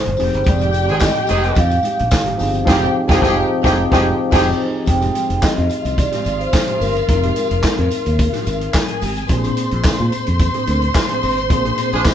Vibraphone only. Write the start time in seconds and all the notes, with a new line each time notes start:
Already playing: C5
0.49 D5
1.04 D#5
1.59 F5
4.88 G5
5.43 D#5
5.98 D5
6.41 C5
6.81 A#4